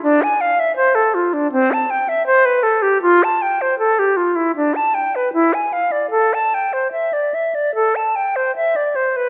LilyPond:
\new Staff \with { instrumentName = "Flute" } { \time 4/4 \key a \minor \tempo 4 = 78 d'16 gis''16 f''16 e''16 c''16 a'16 f'16 d'16 c'16 a''16 g''16 e''16 c''16 b'16 a'16 g'16 | f'16 a''16 g''16 c''16 a'16 g'16 f'16 e'16 d'16 a''16 g''16 b'16 e'16 gis''16 f''16 d''16 | a'16 a''16 g''16 c''16 e''16 d''16 e''16 d''16 a'16 a''16 g''16 c''16 e''16 d''16 c''16 b'16 | }